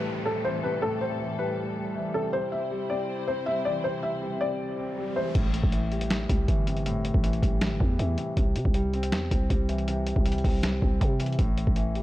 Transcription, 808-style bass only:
5.35 5.62 A1 loud
5.63 6.27 A1 loud
6.29 6.47 C2 loud
6.48 7.12 G1 loud
7.14 7.41 A1 loud
7.43 7.72 A1 loud
7.71 7.80 G1 loud
7.80 7.98 E2 loud
7.99 8.17 E2 loud
8.37 8.57 C2 loud
8.56 8.65 C3 loud
8.65 9.14 C2 loud
9.12 9.30 E2 medium
9.31 9.49 C2 loud
9.50 10.14 C2 loud
10.16 10.43 C2 loud
10.44 10.81 C2 loud
10.82 11.00 C2 loud
11.01 11.37 C3 loud
11.39 11.66 A1 loud
11.67 12.03 A1 loud

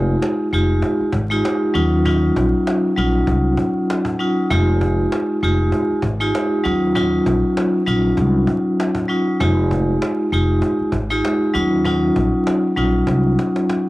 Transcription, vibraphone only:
0.00 0.46 G#3 loud
0.00 0.46 D#4 medium
0.00 0.46 F4 medium
0.00 0.47 G4 medium
0.53 1.09 G#3 medium
0.53 1.10 D#4 medium
0.53 1.10 F4 medium
0.53 1.10 G4 loud
1.30 1.75 G#3 medium
1.30 1.74 D#4 medium
1.30 1.74 F4 medium
1.30 1.76 G4 loud
1.74 2.03 F#3 loud
1.74 2.03 C#4 medium
1.74 2.03 D#4 medium
1.74 2.04 F4 loud
2.05 2.91 F#3 loud
2.05 2.91 C#4 medium
2.05 2.91 D#4 medium
2.05 2.91 F4 loud
2.97 4.11 F#3 medium
2.97 4.11 C#4 medium
2.97 4.11 D#4 medium
2.97 4.12 F4 medium
4.19 4.48 F#3 medium
4.19 4.48 C#4 medium
4.19 4.48 D#4 medium
4.19 4.49 F4 medium
4.50 5.36 G#3 loud
4.50 5.36 D#4 medium
4.50 5.36 F4 medium
4.50 5.36 G4 medium
5.43 5.99 G#3 medium
5.43 6.00 D#4 medium
5.43 6.00 F4 medium
5.43 6.00 G4 loud
6.20 6.64 G#3 medium
6.20 6.64 D#4 medium
6.20 6.64 F4 medium
6.20 6.65 G4 loud
6.64 6.93 F#3 loud
6.64 6.93 C#4 medium
6.64 6.93 D#4 medium
6.64 6.93 F4 loud
6.95 7.80 F#3 loud
6.95 7.81 C#4 medium
6.95 7.81 D#4 medium
6.95 7.81 F4 loud
7.86 9.01 F#3 loud
7.86 9.01 C#4 medium
7.86 9.01 D#4 medium
7.86 9.01 F4 loud
9.08 9.37 F#3 medium
9.08 9.38 C#4 medium
9.08 9.38 D#4 medium
9.08 9.38 F4 medium
9.40 10.26 G#3 loud
9.40 10.26 D#4 medium
9.40 10.26 F4 medium
9.40 10.26 G4 medium
10.32 10.89 G#3 medium
10.32 10.89 D#4 medium
10.32 10.90 F4 medium
10.32 10.90 G4 loud
11.10 11.54 G#3 loud
11.10 11.53 D#4 loud
11.10 11.54 F4 medium
11.10 11.55 G4 loud
11.54 11.82 F#3 loud
11.54 11.83 C#4 medium
11.54 11.83 D#4 medium
11.54 11.83 F4 loud
11.85 12.70 F#3 loud
11.85 12.71 C#4 medium
11.85 12.71 D#4 medium
11.85 12.71 F4 loud
12.76 13.89 F#3 loud
12.76 13.89 C#4 medium
12.76 13.89 D#4 medium
12.76 13.89 F4 medium

